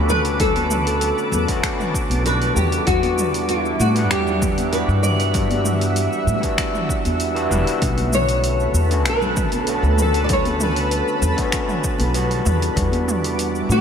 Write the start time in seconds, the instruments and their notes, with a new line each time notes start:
Already playing: upright bass D2, tine electric piano D3 A3 B3 C#4 F#4, ambient pad A4 B4 B5 D6
0.09 nylon-string guitar B4, mid tom, shaker
0.25 open hi-hat, shaker
0.37 tine electric piano D3 A3 B3 C#4, nylon-string guitar A4, ambient pad A5, kick, open hi-hat, low conga, shaker
0.42 tine electric piano F#4
0.56 open hi-hat, high conga, shaker
0.70 mid tom, shaker
0.87 open hi-hat, shaker
1.01 open hi-hat, shaker
1.18 shaker
1.31 upright bass E2, high conga, low conga, shaker
1.47 tine electric piano D3 A3 B3 C#4, kick, open hi-hat, shaker
1.52 tine electric piano F#4
1.64 finger snap, kick, open hi-hat, shaker
1.80 mid tom, shaker
1.94 kick, shaker
2.10 upright bass B1, open hi-hat, high conga, shaker
2.23 tine electric piano E3 G3 B3 D4 F#4, nylon-string guitar B4, open hi-hat, shaker
2.42 open hi-hat, shaker
2.56 upright bass E2, ambient pad G3 E5 F#5, nylon-string guitar G4, mid tom, shaker
2.72 open hi-hat, shaker
2.85 upright bass E2, tine electric piano E3 G3 B3 D4, nylon-string guitar F#4, kick, open hi-hat, low conga, shaker
2.90 tine electric piano F#4
3.03 open hi-hat, high conga, shaker
3.18 mid tom, shaker
3.34 open hi-hat, shaker
3.48 nylon-string guitar E4, open hi-hat, shaker
3.65 shaker
3.80 upright bass A2, nylon-string guitar F#4, high conga, shaker
3.94 tine electric piano E3 G3 B3 D4, open hi-hat, shaker
3.99 tine electric piano F#5
4.10 upright bass E2, nylon-string guitar G4, finger snap, open hi-hat, shaker
4.27 low conga, shaker
4.42 kick, mid tom, shaker
4.58 open hi-hat, high conga, shaker
4.71 tine electric piano E3 G3 B3 D4 F#4, nylon-string guitar B4, open hi-hat, shaker
4.89 upright bass G2, shaker
5.03 nylon-string guitar D5, ambient pad E6, mid tom, shaker
5.20 open hi-hat, shaker
5.32 tine electric piano E3 G3 B3 D4, kick, open hi-hat, low conga, shaker
5.37 tine electric piano F#4
5.50 open hi-hat, high conga, shaker
5.65 mid tom, shaker
5.81 open hi-hat, shaker
5.96 open hi-hat, shaker
6.13 shaker
6.27 upright bass A2, high conga, low conga, shaker
6.41 tine electric piano E3 G3 B3, kick, open hi-hat, shaker
6.45 tine electric piano D4 F#4
6.58 finger snap, kick, open hi-hat, shaker
6.75 mid tom, shaker
6.89 kick, shaker
7.05 upright bass E2, open hi-hat, high conga, shaker
7.20 open hi-hat, shaker
7.34 tine electric piano E3 G3 B3 D4 F#4, open hi-hat, shaker
7.50 upright bass E1, tine electric piano E3 G3 B3 D4 E4, mid tom, shaker
7.67 open hi-hat, shaker
7.79 upright bass B1, tine electric piano D3 A3 B3 C#4, ambient pad A4 B4 A5 B5, kick, open hi-hat, low conga, shaker
7.84 tine electric piano F#4
7.97 open hi-hat, high conga, shaker
8.13 nylon-string guitar C#5, mid tom, shaker
8.29 open hi-hat, shaker
8.44 open hi-hat, shaker
8.60 shaker
8.74 upright bass E2, high conga, shaker
8.88 tine electric piano D3 A3 B3 C#4, open hi-hat, shaker
8.93 tine electric piano F#4
9.05 upright bass B1, nylon-string guitar B4, finger snap, open hi-hat, shaker
9.22 low conga, shaker
9.36 kick, mid tom, shaker
9.52 open hi-hat, high conga, shaker
9.67 tine electric piano D3 A3 B3 C#4 F#4, open hi-hat, shaker
9.83 upright bass D2, shaker
9.98 nylon-string guitar A4, mid tom, shaker
10.14 open hi-hat, shaker
10.24 tine electric piano D3, nylon-string guitar D5
10.29 tine electric piano A3 B3 C#4 F#4, nylon-string guitar C#5, kick, open hi-hat, low conga, shaker
10.45 open hi-hat, high conga, shaker
10.60 nylon-string guitar B4, mid tom, shaker
10.76 open hi-hat, shaker
10.91 open hi-hat, shaker
11.08 shaker
11.22 upright bass E2, high conga, low conga, shaker
11.37 tine electric piano D3 A3 B3 C#4, kick, open hi-hat, shaker
11.42 tine electric piano F#4
11.52 finger snap, kick, open hi-hat, shaker
11.69 mid tom, shaker
11.84 kick, shaker
11.99 upright bass B1, open hi-hat, high conga, shaker
12.14 tine electric piano E3 G3 B3 D4 F#4, open hi-hat, shaker
12.31 open hi-hat, shaker
12.45 upright bass E2, ambient pad G3 E5 F#5 D6, mid tom, shaker
12.62 open hi-hat, shaker
12.73 upright bass E2, tine electric piano E3 G3 B3 D4, kick, open hi-hat, low conga
12.77 tine electric piano F#4, shaker
12.92 open hi-hat, high conga, shaker
13.08 mid tom, shaker
13.24 open hi-hat, shaker
13.39 open hi-hat, shaker
13.55 shaker
13.69 upright bass A2, nylon-string guitar G4, high conga, shaker